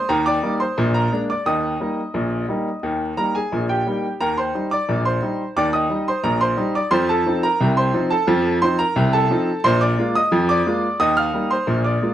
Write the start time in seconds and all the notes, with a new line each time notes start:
0.09 D#2 D#3 A#4 A#5
0.26 D5 D6
0.43 G3 A#3 D#4
0.60 C5 C6
0.78 A#1 A#2
0.94 A#4 A#5
1.12 G#3 A#3 D4
1.30 D5 D6
1.46 D#2 D#3 D#5 D#6
1.80 G3 A#3 D#4
2.14 A#1 A#2
2.49 G3 A#3 D#4
2.83 D#2 D#3
3.17 G3 A#3 D#4 A#4 A#5
3.35 G#4 G#5
3.52 A#1 A#2
3.69 G4 G5
3.87 G3 A#3 D#4
4.20 D#2 D#3 A#4 A#5
4.37 C5 C6
4.55 G3 D#4
4.71 D5 D6
4.89 A#1 A#2
5.05 C5 C6
5.22 G3 D#4
5.56 D#2 D#3 D5 D6
5.73 D#5 D#6
5.90 G3 D#4
6.08 C5 C6
6.24 A#1 A#2 A#4 A#5
6.41 C5 C6
6.57 G3 D#4
6.75 D5 D6
6.91 F2 F3 C5 C6
7.09 A4 A5
7.26 F3 C4 D#4
7.43 A#4 A#5
7.60 C2 C3
7.77 C5 C6
7.94 F3 C4 D#4
8.10 A4 A5
8.27 F2 F3
8.62 F3 C4 D#4 C5 C6
8.79 A#4 A#5
8.96 C2 C3
9.13 A4 A5
9.30 F3 C4 D#4
9.64 A#1 A#2 C5 C6
9.81 D5 D6
9.98 G#3 A#3 F4
10.15 D#5 D#6
10.31 F2 F3
10.49 D5 D6
10.66 G#3 A#3 F4
11.00 D#2 D#3 D#5 D#6
11.17 F5 F6
11.34 G3 A#3 D#4
11.51 C5 C6
11.67 A#1 A#2
11.84 D5 D6
12.02 G#3 A#3 F4